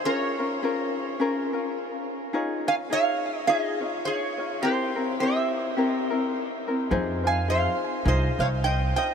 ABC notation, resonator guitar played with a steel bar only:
X:1
M:4/4
L:1/8
Q:"Swing" 1/4=105
K:Cphr
V:1 name="Resonator guitar played with a steel bar"
[Bd]4 z4 | z [fa] [df]2 [Ae]2 [Ad]2 | [Gc]2 [c=e]4- [ce] z | z [fa] [cf]2 [ce] [df] [eg] [eg] |]